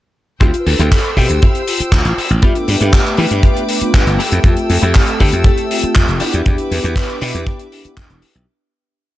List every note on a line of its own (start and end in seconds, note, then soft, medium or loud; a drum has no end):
0.40 0.51 D2 medium
0.40 0.54 C4 loud
0.40 0.54 E4 medium
0.40 0.60 F4 medium
0.40 0.54 F4 medium
0.40 0.54 G4 loud
0.40 2.41 C5 medium
0.40 8.44 G5 medium
0.40 2.41 E6 medium
0.40 kick loud
0.40 closed hi-hat medium
0.54 closed hi-hat medium
0.60 0.66 B4 medium
0.66 0.76 D2 medium
0.66 1.18 A4 loud
0.66 muted clean electric guitar stroke soft
0.66 open hi-hat loud
0.79 0.89 D2 medium
0.79 0.98 C4 medium
0.79 0.98 E4 medium
0.79 0.98 F4 medium
0.79 0.98 G4 medium
0.79 closed hi-hat medium
0.92 kick loud
0.92 clap loud
0.92 open hi-hat medium
1.05 closed hi-hat medium
1.17 1.26 B2 medium
1.17 1.30 C4 medium
1.17 1.30 E4 medium
1.17 1.30 F4 medium
1.17 1.23 G4 medium
1.17 1.30 G4 medium
1.17 kick medium
1.17 open hi-hat loud
1.24 1.31 A4 medium
1.29 1.39 D2 medium
1.29 1.65 G4 medium
1.29 closed hi-hat medium
1.42 1.61 C4 medium
1.42 1.61 E4 medium
1.42 1.61 F4 medium
1.42 1.61 G4 medium
1.42 kick loud
1.42 closed hi-hat medium
1.55 closed hi-hat medium
1.68 2.15 F4 medium
1.68 open hi-hat loud
1.80 muted slap bass stroke soft
1.80 muted clean electric guitar stroke soft
1.80 closed hi-hat medium
1.92 2.02 D2 medium
1.92 kick loud
1.92 clap loud
1.92 closed hi-hat medium
2.05 2.15 A1 medium
2.05 closed hi-hat medium
2.18 muted slap bass stroke soft
2.18 open hi-hat loud
2.29 2.40 A1 medium
2.29 closed hi-hat soft
2.42 2.52 G2 medium
2.42 3.78 A3 medium
2.42 3.78 B3 medium
2.42 2.56 B3 loud
2.42 3.79 D4 medium
2.42 2.56 F4 medium
2.42 2.55 F4 medium
2.42 2.56 G4 loud
2.42 4.17 B4 medium
2.42 3.79 E5 loud
2.42 4.17 D6 medium
2.42 kick loud
2.42 closed hi-hat medium
2.55 closed hi-hat soft
2.68 2.78 G2 medium
2.68 2.80 A4 medium
2.68 muted clean electric guitar stroke soft
2.68 open hi-hat loud
2.81 2.90 G2 medium
2.81 3.00 B3 medium
2.81 3.00 F4 medium
2.81 3.00 G4 medium
2.81 closed hi-hat soft
2.93 3.19 G4 medium
2.93 kick loud
2.93 clap loud
2.93 open hi-hat medium
3.07 closed hi-hat soft
3.17 3.28 E3 medium
3.17 3.31 B3 medium
3.17 3.31 F4 medium
3.17 3.31 G4 medium
3.17 4.15 B4 medium
3.17 open hi-hat loud
3.31 3.41 G2 medium
3.31 closed hi-hat medium
3.43 3.62 B3 medium
3.43 3.63 F4 medium
3.43 3.63 G4 medium
3.43 kick loud
3.43 closed hi-hat medium
3.57 closed hi-hat soft
3.69 open hi-hat loud
3.81 4.18 A3 medium
3.81 4.18 B3 medium
3.81 4.18 D4 medium
3.81 4.18 F4 loud
3.81 muted clean electric guitar stroke soft
3.81 muted slap bass stroke soft
3.81 closed hi-hat soft
3.94 4.04 G2 medium
3.94 kick loud
3.94 clap loud
3.94 closed hi-hat medium
4.07 4.16 G1 medium
4.07 closed hi-hat soft
4.19 4.59 A3 medium
4.19 4.60 E4 medium
4.19 4.60 G4 loud
4.19 6.19 A4 medium
4.19 6.19 E6 medium
4.19 open hi-hat loud
4.32 4.41 F2 medium
4.32 closed hi-hat medium
4.43 4.54 F2 medium
4.43 6.17 A3 medium
4.43 6.18 C4 medium
4.43 4.68 F4 medium
4.43 6.18 G4 medium
4.43 6.18 E5 medium
4.43 kick loud
4.43 closed hi-hat medium
4.57 closed hi-hat soft
4.69 4.79 F2 medium
4.69 5.17 A4 loud
4.69 muted clean electric guitar stroke soft
4.69 open hi-hat loud
4.82 4.92 F2 medium
4.82 5.01 A3 medium
4.82 5.01 E4 medium
4.82 5.01 G4 medium
4.82 closed hi-hat soft
4.94 kick loud
4.94 clap loud
4.94 open hi-hat medium
5.07 closed hi-hat medium
5.19 5.30 D3 medium
5.19 5.33 A3 medium
5.19 5.33 E4 medium
5.19 5.72 G4 loud
5.19 5.33 G4 medium
5.19 kick medium
5.19 open hi-hat loud
5.32 5.42 F2 medium
5.32 closed hi-hat medium
5.44 5.64 A3 medium
5.44 5.64 E4 medium
5.44 5.64 A4 medium
5.44 kick loud
5.44 closed hi-hat medium
5.57 closed hi-hat soft
5.70 6.17 F4 medium
5.70 open hi-hat loud
5.82 muted clean electric guitar stroke soft
5.82 muted slap bass stroke soft
5.82 closed hi-hat medium
5.95 6.05 F2 medium
5.95 kick loud
5.95 clap loud
5.95 closed hi-hat medium
6.08 6.18 F1 medium
6.08 closed hi-hat soft
6.20 6.43 B3 medium
6.20 6.61 D4 medium
6.20 6.43 D4 medium
6.20 6.61 E4 medium
6.20 6.43 E4 medium
6.20 6.61 G4 loud
6.20 6.43 G4 loud
6.20 8.46 B4 medium
6.20 8.46 E5 medium
6.20 8.46 D6 medium
6.20 open hi-hat loud
6.33 6.43 E2 medium
6.33 closed hi-hat soft
6.45 6.56 E2 loud
6.45 7.81 B3 medium
6.45 7.82 D4 medium
6.45 7.82 E4 medium
6.45 6.72 G4 loud
6.45 7.82 G4 loud
6.45 kick loud
6.45 closed hi-hat medium
6.58 closed hi-hat soft
6.71 6.81 E2 medium
6.71 7.23 B4 loud
6.71 muted clean electric guitar stroke soft
6.71 open hi-hat loud
6.83 6.94 E2 loud
6.83 7.03 D4 medium
6.83 7.03 E4 medium
6.83 7.03 G4 medium
6.83 closed hi-hat soft
6.96 kick loud
6.96 clap loud
6.96 open hi-hat medium
7.09 closed hi-hat medium
7.21 7.31 B2 medium
7.21 7.34 D4 medium
7.21 7.34 E4 medium
7.21 7.35 G4 medium
7.21 7.74 G4 loud
7.21 open hi-hat loud
7.34 7.44 E2 medium
7.34 closed hi-hat medium
7.46 7.66 D4 medium
7.46 7.66 E4 medium
7.46 7.66 G4 medium
7.46 kick loud
7.46 closed hi-hat medium
7.59 closed hi-hat soft
7.72 8.20 D4 medium
7.72 open hi-hat loud
7.84 8.45 B3 medium
7.84 8.45 D4 medium
7.84 8.45 E4 medium
7.84 8.45 G4 medium
7.84 muted slap bass stroke soft
7.84 muted clean electric guitar stroke soft
7.84 closed hi-hat medium
7.97 8.07 E2 medium
7.97 kick loud
7.97 clap loud
7.97 closed hi-hat medium
8.10 8.19 E1 medium
8.10 closed hi-hat soft
8.22 muted slap bass stroke soft
8.22 open hi-hat loud
8.35 8.45 B1 medium
8.35 closed hi-hat medium